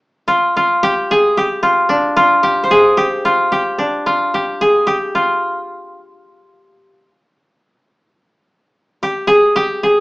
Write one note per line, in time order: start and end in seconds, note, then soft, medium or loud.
0.28 0.56 F4 medium
0.57 1.62 F4 medium
0.83 1.17 G4 loud
1.11 1.43 G#4 medium
1.37 2.43 G4 medium
1.63 2.16 F4 medium
1.89 3.78 D4 medium
2.16 3.25 F4 medium
2.43 2.77 G4 medium
2.64 4.35 C5 medium
2.71 3.03 G#4 medium
2.97 3.51 G4 medium
3.25 4.06 F4 medium
3.52 4.34 G4 medium
3.78 6.21 D4 medium
4.06 5.15 F4 medium
4.34 4.67 G4 medium
4.61 4.93 G#4 medium
4.87 6.91 G4 medium
5.15 7.34 F4 medium
9.03 9.33 G4 medium
9.27 9.62 G#4 loud
9.56 9.89 G4 medium
9.83 10.00 G#4 medium